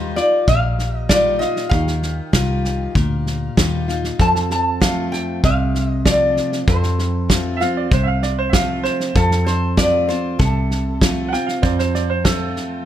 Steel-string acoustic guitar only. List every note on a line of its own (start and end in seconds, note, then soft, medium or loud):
0.00 0.15 D#3 medium
0.00 0.16 G3 medium
0.00 0.16 D#4 medium
0.00 0.15 F4 medium
0.17 0.47 D#4 soft
0.17 0.46 F4 medium
0.48 1.66 A#2 medium
1.10 1.40 D#3 medium
1.10 1.40 G3 medium
1.10 1.40 D#4 medium
1.10 1.39 F4 medium
1.41 1.72 D#4 soft
1.41 1.71 F4 medium
1.72 2.31 D#3 medium
2.33 2.92 D#3 medium
2.33 2.93 G3 medium
2.33 2.93 D#4 medium
2.33 2.93 F4 medium
2.96 4.13 A#2 medium
3.57 3.87 D#3 medium
3.57 3.87 G3 medium
3.57 3.88 D#4 medium
3.57 3.87 F4 medium
3.88 4.19 D#4 soft
3.88 4.18 F4 medium
4.19 5.37 F2 medium
4.80 5.40 F3 medium
4.80 5.41 A3 medium
4.80 5.41 C4 medium
4.80 5.41 F4 medium
5.44 6.62 C3 medium
6.05 6.64 F3 soft
6.05 6.65 A3 soft
6.05 6.65 C4 medium
6.05 6.66 F4 medium
6.68 7.86 F2 medium
7.29 7.59 F3 medium
7.29 7.59 A3 medium
7.29 7.60 C4 medium
7.29 7.59 F4 medium
7.60 7.91 C4 soft
7.60 7.90 F4 medium
7.92 9.09 C3 medium
8.54 9.12 F3 soft
8.54 9.13 A3 medium
8.54 9.13 C4 medium
8.54 9.14 F4 medium
9.16 10.33 F2 medium
9.77 10.07 F3 medium
9.77 10.08 A3 medium
9.77 10.08 C4 medium
9.77 10.07 F4 medium
10.08 10.40 C4 soft
10.08 10.38 F4 medium
10.39 11.57 C3 medium
11.01 11.31 F3 medium
11.01 11.31 A3 medium
11.01 11.32 C4 medium
11.01 11.31 F4 medium
11.32 11.63 C4 soft
11.32 11.62 F4 medium
11.63 12.81 F2 medium
12.24 12.84 F3 medium
12.24 12.84 A3 medium
12.24 12.84 C4 medium
12.24 12.85 F4 medium